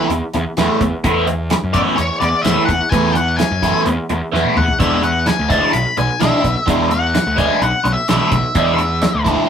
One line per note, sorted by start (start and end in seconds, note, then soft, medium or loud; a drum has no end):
0.10 0.20 E2 medium
0.10 muted overdriven electric guitar stroke soft
0.10 closed hi-hat medium
0.34 0.44 E2 medium
0.34 muted overdriven electric guitar stroke soft
0.34 closed hi-hat medium
0.57 0.68 E2 medium
0.57 0.81 E3 medium
0.57 0.80 A3 medium
0.57 0.80 B3 medium
0.57 0.79 E4 medium
0.57 snare loud
0.57 closed hi-hat medium
0.81 0.91 E2 medium
0.81 muted overdriven electric guitar stroke medium
0.81 kick medium
0.81 closed hi-hat medium
1.04 1.54 E2 loud
1.04 1.27 E3 medium
1.04 1.27 A3 medium
1.04 1.27 B3 medium
1.04 1.26 E4 loud
1.04 kick loud
1.04 closed hi-hat loud
1.27 muted overdriven electric guitar stroke soft
1.27 closed hi-hat medium
1.50 muted overdriven electric guitar stroke soft
1.50 snare loud
1.50 closed hi-hat medium
1.64 1.84 F#2 medium
1.73 1.96 E3 medium
1.73 1.96 A3 medium
1.73 1.96 B3 medium
1.73 1.96 E4 medium
1.73 1.80 D5 medium
1.73 kick medium
1.73 closed hi-hat medium
1.97 2.09 E2 medium
1.97 2.20 C#5 medium
1.97 muted overdriven electric guitar stroke soft
1.97 closed hi-hat medium
2.20 2.32 E2 medium
2.20 2.45 D5 medium
2.20 muted overdriven electric guitar stroke soft
2.20 closed hi-hat medium
2.42 2.55 E2 medium
2.42 2.67 E3 medium
2.42 2.67 A3 medium
2.42 2.67 E4 medium
2.42 2.65 E5 medium
2.42 closed hi-hat medium
2.46 2.67 B3 medium
2.46 snare loud
2.65 2.79 E2 medium
2.65 2.92 F#5 medium
2.65 muted overdriven electric guitar stroke soft
2.65 kick medium
2.65 closed hi-hat medium
2.89 3.42 E2 loud
2.89 3.14 E3 medium
2.89 3.14 A3 loud
2.89 3.13 B3 medium
2.89 3.14 E4 medium
2.89 3.15 G#5 loud
2.89 kick loud
2.89 closed hi-hat medium
3.12 3.38 F#5 medium
3.12 muted overdriven electric guitar stroke soft
3.12 closed hi-hat medium
3.36 3.82 G#5 medium
3.36 muted overdriven electric guitar stroke soft
3.36 snare loud
3.36 closed hi-hat medium
3.51 3.71 F#2 medium
3.63 3.85 E3 medium
3.63 3.86 A3 medium
3.63 3.86 B3 medium
3.63 3.86 E4 medium
3.63 kick medium
3.63 snare soft
3.63 closed hi-hat medium
3.86 3.97 E2 medium
3.86 muted overdriven electric guitar stroke soft
3.86 closed hi-hat medium
4.09 4.20 E2 medium
4.09 muted overdriven electric guitar stroke soft
4.09 closed hi-hat medium
4.33 4.43 E2 medium
4.33 4.57 E3 medium
4.33 4.57 A3 medium
4.33 4.56 B3 medium
4.33 4.56 E4 medium
4.33 snare medium
4.44 high tom medium
4.57 4.67 E2 medium
4.57 4.79 F#5 medium
4.57 muted overdriven electric guitar stroke medium
4.57 mid tom medium
4.68 floor tom medium
4.80 5.30 E2 loud
4.80 5.02 E3 medium
4.80 5.02 G#3 medium
4.80 5.02 D4 loud
4.80 5.02 E4 medium
4.80 5.02 E5 medium
4.80 kick loud
4.80 closed hi-hat medium
5.03 5.28 F#5 medium
5.03 muted overdriven electric guitar stroke soft
5.03 closed hi-hat medium
5.26 5.50 G#5 medium
5.26 muted overdriven electric guitar stroke soft
5.26 snare loud
5.26 closed hi-hat medium
5.39 5.59 D2 medium
5.49 5.72 E3 medium
5.49 5.72 G#3 medium
5.49 5.72 D4 medium
5.49 5.73 E4 medium
5.49 5.73 A5 medium
5.49 kick medium
5.49 snare soft
5.49 closed hi-hat medium
5.73 5.84 B1 medium
5.73 5.98 B5 loud
5.73 muted overdriven electric guitar stroke medium
5.73 closed hi-hat medium
5.97 6.08 B1 medium
5.97 6.22 G#5 medium
5.97 muted overdriven electric guitar stroke soft
5.97 closed hi-hat medium
6.20 6.31 B1 medium
6.20 6.43 E3 medium
6.20 6.43 G#3 medium
6.20 6.43 D4 medium
6.20 6.42 E4 medium
6.20 6.65 E5 medium
6.20 snare loud
6.20 closed hi-hat medium
6.43 6.54 B1 medium
6.43 muted overdriven electric guitar stroke medium
6.43 kick medium
6.43 closed hi-hat medium
6.67 7.17 E2 medium
6.67 6.89 E3 medium
6.67 6.89 G#3 medium
6.67 6.89 D4 loud
6.67 6.89 E4 loud
6.67 kick loud
6.67 closed hi-hat loud
6.90 7.40 F#5 medium
6.90 muted overdriven electric guitar stroke soft
6.90 closed hi-hat medium
7.14 muted overdriven electric guitar stroke soft
7.14 snare loud
7.14 closed hi-hat medium
7.27 7.46 D2 medium
7.36 7.60 E3 medium
7.36 7.61 G#3 medium
7.36 7.61 D4 medium
7.36 7.61 E4 medium
7.36 7.62 G#5 loud
7.36 kick medium
7.36 closed hi-hat medium
7.61 7.72 B1 medium
7.61 7.93 F#5 medium
7.61 muted overdriven electric guitar stroke soft
7.61 closed hi-hat medium
7.84 7.95 B1 loud
7.84 muted overdriven electric guitar stroke soft
7.84 closed hi-hat medium
7.93 8.08 E5 medium
8.08 8.19 B1 medium
8.08 8.32 E3 medium
8.08 8.31 G#3 medium
8.08 8.31 D4 medium
8.08 8.30 E4 medium
8.08 9.22 E5 medium
8.08 snare loud
8.08 closed hi-hat medium
8.31 8.42 B1 medium
8.31 muted overdriven electric guitar stroke soft
8.31 kick medium
8.31 closed hi-hat medium
8.55 9.05 E2 medium
8.55 8.78 E3 medium
8.55 8.78 G#3 medium
8.55 8.78 D4 loud
8.55 8.78 E4 loud
8.55 kick loud
8.55 closed hi-hat medium
8.78 muted overdriven electric guitar stroke medium
8.78 closed hi-hat medium
9.02 muted overdriven electric guitar stroke soft
9.02 snare loud
9.02 closed hi-hat medium
9.14 9.34 D2 medium
9.24 9.48 E3 medium
9.24 9.49 G#3 medium
9.24 9.49 D4 medium
9.24 9.49 E4 medium
9.24 kick medium
9.24 closed hi-hat medium